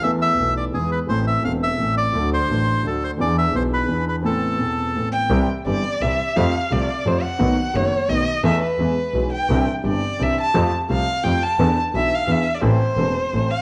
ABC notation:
X:1
M:3/4
L:1/16
Q:1/4=172
K:Am
V:1 name="Violin"
z12 | z12 | z12 | z12 |
z8 z2 g2- | g2 z2 d4 e4 | f4 d4 c2 ^f2- | ^f4 ^c4 ^d4 |
e2 B8 g2- | g2 z2 d4 e2 a2- | a2 z2 f4 g2 a2- | a2 z2 e2 f2 e3 d |
c8- c2 f2 |]
V:2 name="Bandoneon"
e2 e4 d2 ^G2 B2 | c2 e2 f2 e4 d2- | d2 c6 A2 c2 | d2 e2 c2 B4 B2 |
A8- A2 z2 | z12 | z12 | z12 |
z12 | z12 | z12 | z12 |
z12 |]
V:3 name="Grand piano" clef=bass
[E,,E,A,B,A]4 [B,,,B,,E,A,B,A]4 [E,,E,^G,B,^G]4 | [A,,,A,,E,A,CA]4 [E,,,E,,E,A,CA]4 [A,,,A,,E,A,CA]4 | [D,,D,^F,A,DA]4 [A,,,A,,F,A,DA]4 [D,,D,F,A,DA]4 | [E,,E,B,D^G]4 [B,,,B,,E,B,DG]4 [E,,E,B,DG]4 |
[A,,,A,,E,B,CA]4 [E,,,E,,E,B,CA]4 [A,,,A,,E,B,CA]4 | [C,,C,E,G,CG]2 z2 [G,,,G,,E,G,CG]2 z2 [C,,C,E,G,CG]2 z2 | [F,,F,A,CG]2 z2 [C,,C,F,A,CG]2 z2 [F,,F,A,CG]2 z2 | [B,,,B,,^D,A,B,^F]2 z2 [^F,,,^F,,D,A,B,F]2 z2 [B,,,B,,D,A,B,F]2 z2 |
[E,,E,A,B,A]2 z2 [E,,E,^G,B,^G]2 z2 [B,,,B,,E,G,B,G]2 z2 | [C,,C,E,CDG]2 z2 [G,,,G,,E,CDG]2 z2 [C,,C,E,CDG]2 z2 | [F,,F,A,CG]2 z2 [C,,C,F,A,CG]2 z2 [F,,F,A,CG]2 z2 | [E,,E,B,DA]2 z2 [B,,,B,,E,B,DA]2 z2 [E,,E,B,D^G]2 z2 |
[A,,,A,,E,A,CA]2 z2 [E,,,E,,E,A,CA]2 z2 [A,,,A,,E,A,CA]2 z2 |]
V:4 name="Double bass" clef=bass
E,,4 B,,,4 E,,4 | A,,,4 E,,,4 A,,,4 | D,,4 A,,,4 D,,4 | E,,4 B,,,4 E,,4 |
z12 | C,,2 z2 G,,,2 z2 C,,2 z2 | F,,2 z2 C,,2 z2 F,,2 z2 | B,,,2 z2 ^F,,,2 z2 B,,,2 z2 |
E,,2 z2 E,,2 z2 B,,,2 z2 | C,,2 z2 G,,,2 z2 C,,2 z2 | F,,2 z2 C,,2 z2 F,,2 z2 | E,,2 z2 B,,,2 z2 E,,2 z2 |
A,,,2 z2 E,,,2 z2 A,,,2 z2 |]